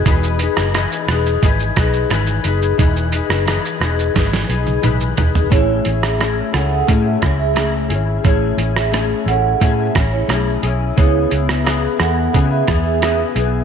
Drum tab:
HH |x-x-x-x-x-x-x-x-|x-x-x-x-x-x-x-x-|x-x-x-x-x-x-x-x-|x-x-x-x-x-x-x-x-|
SH |xxxxxxxxxxxxxxxx|xxxxxxxxxxxxxxxx|----------------|----------------|
SD |---rr-r---r-r---|---rr-r-oo------|---rr-r---r-r---|---rr-----r-r---|
T1 |----------------|-----------o----|----------------|----------------|
T2 |----------------|------------o---|----------------|----------------|
FT |----------------|--------------oo|----------------|----------------|
BD |o-------o-o-----|o-------o-------|o-------o-o-----|o-------o-o-----|

HH |x-x-x-x-x-x-x-x-|
SH |----------------|
SD |---rr-r---r-r---|
T1 |----------------|
T2 |----------------|
FT |----------------|
BD |o-------o-o-----|